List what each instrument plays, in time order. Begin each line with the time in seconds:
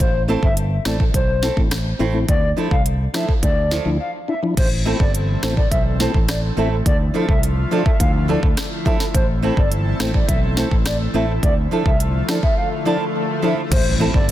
0.00 fingered electric bass A1, soft synth lead C5, kick, closed hi-hat
0.28 tonewheel organ A3 C4 E4, steel-string acoustic guitar A3 C4 E4 A4
0.43 fingered electric bass G1, soft synth lead E5, kick
0.57 closed hi-hat
0.85 fingered electric bass A1, tonewheel organ A3 C4 E4, steel-string acoustic guitar A3 C4 E4 A4, soft synth lead D5, cross-stick, snare
1.00 kick
1.14 fingered electric bass B1, soft synth lead C5, kick, closed hi-hat
1.42 steel-string acoustic guitar A3 C4 E4 A4, tonewheel organ C4 E4, snare
1.56 fingered electric bass A1, tonewheel organ A3 C4 E4, kick
1.71 cross-stick, snare, closed hi-hat
1.99 fingered electric bass A1, steel-string acoustic guitar A3 C4 E4 A4, tonewheel organ C4 E4
2.14 tonewheel organ A3 C4 E4
2.29 fingered electric bass D2, soft synth lead D5, kick, closed hi-hat
2.57 tonewheel organ F3 D4 E4, steel-string acoustic guitar F3 A3 E4 A4
2.71 fingered electric bass C2, soft synth lead F5, kick
2.86 closed hi-hat
3.14 tonewheel organ F3 D4 E4, steel-string acoustic guitar F3 A3 E4 A4, soft synth lead E5, cross-stick, snare
3.29 kick
3.42 fingered electric bass D2, soft synth lead D5, kick, closed hi-hat
3.71 steel-string acoustic guitar F3 A3 E4 A4, tonewheel organ D4 E4, snare
3.85 fingered electric bass D2, tonewheel organ F3 D4 E4
4.00 soft synth lead F5
4.28 tonewheel organ D4 E4, soft synth lead E5
4.43 tonewheel organ F3 D4 E4
4.57 fingered electric bass A1, analog synth pad E3 A3 C4 E4 A4, soft synth lead C5, kick, closed hi-hat, crash
4.85 steel-string acoustic guitar A3 C4 E4 A4, tonewheel organ A3 C4 E4
5.00 fingered electric bass G1, soft synth lead D5, kick
5.15 closed hi-hat
5.42 fingered electric bass A1, steel-string acoustic guitar A3 C4 E4 A4, tonewheel organ A3 C4 E4, soft synth lead C5, cross-stick, snare
5.57 soft synth lead D5, kick
5.71 fingered electric bass B1, soft synth lead E5, kick, closed hi-hat
6.00 steel-string acoustic guitar A3 C4 E4 A4, tonewheel organ A3 C4 E4, soft synth lead C5, snare
6.14 fingered electric bass A1, kick
6.28 soft synth lead D5, cross-stick, snare, closed hi-hat
6.57 fingered electric bass A1, tonewheel organ A3 C4 E4, steel-string acoustic guitar A3 C4 E4 A4, soft synth lead E5
6.86 fingered electric bass D2, analog synth pad D3 F3 F4, soft synth lead D5, kick, closed hi-hat
7.14 tonewheel organ F3 D4 E4, steel-string acoustic guitar F3 A3 E4 A4
7.29 fingered electric bass C2, soft synth lead E5, kick
7.43 closed hi-hat
7.71 steel-string acoustic guitar F3 A3 E4 A4, tonewheel organ F3 D4 F4, soft synth lead D5
7.86 soft synth lead E5, kick
8.00 fingered electric bass D2, soft synth lead F5, kick, closed hi-hat
8.28 steel-string acoustic guitar F3 A3 E4 A4, tonewheel organ F3 D4 E4, soft synth lead D5
8.43 fingered electric bass D2, kick
8.57 cross-stick, snare, closed hi-hat
8.85 steel-string acoustic guitar F3 A3 E4 A4, tonewheel organ F3 D4 E4, soft synth lead E5, kick
9.00 snare
9.14 fingered electric bass A1, analog synth pad E3 C4 A4, soft synth lead C5, kick, closed hi-hat
9.42 steel-string acoustic guitar A3 C4 E4 A4, tonewheel organ A3 C4 E4
9.57 fingered electric bass G1, soft synth lead D5, kick
9.72 closed hi-hat
10.00 fingered electric bass A1, steel-string acoustic guitar A3 C4 E4 A4, tonewheel organ A3 C4 E4, soft synth lead C5, cross-stick, snare
10.14 soft synth lead D5, kick
10.29 fingered electric bass B1, soft synth lead E5, kick, closed hi-hat
10.57 steel-string acoustic guitar A3 C4 E4 A4, tonewheel organ A3 C4 E4, soft synth lead C5, snare
10.71 fingered electric bass A1, kick
10.86 soft synth lead D5, cross-stick, snare, closed hi-hat
11.14 fingered electric bass A1, steel-string acoustic guitar A3 C4 E4 A4, tonewheel organ A3 C4 E4, soft synth lead E5
11.43 fingered electric bass D2, analog synth pad D3 F3 F4, soft synth lead D5, kick, closed hi-hat, swell
11.71 steel-string acoustic guitar F3 A3 E4 A4, tonewheel organ F3 D4 E4
11.86 fingered electric bass C2, soft synth lead E5, kick
12.00 closed hi-hat
12.28 steel-string acoustic guitar F3 A3 E4 A4, tonewheel organ F3 D4 E4, soft synth lead D5, cross-stick, snare
12.43 soft synth lead E5, kick
12.57 soft synth lead F5
12.85 steel-string acoustic guitar F3 A3 E4 A4, tonewheel organ F3 D4 E4, soft synth lead D5
13.42 steel-string acoustic guitar F3 A3 E4 A4, tonewheel organ F3 D4 E4, soft synth lead E5
13.71 fingered electric bass A1, analog synth pad E3 A3 C4 E4 A4, soft synth lead C5, kick, closed hi-hat, crash, impact
13.99 tonewheel organ E3 A3 C4 E4, steel-string acoustic guitar A3 C4 E4 A4
14.14 fingered electric bass G1, soft synth lead D5, kick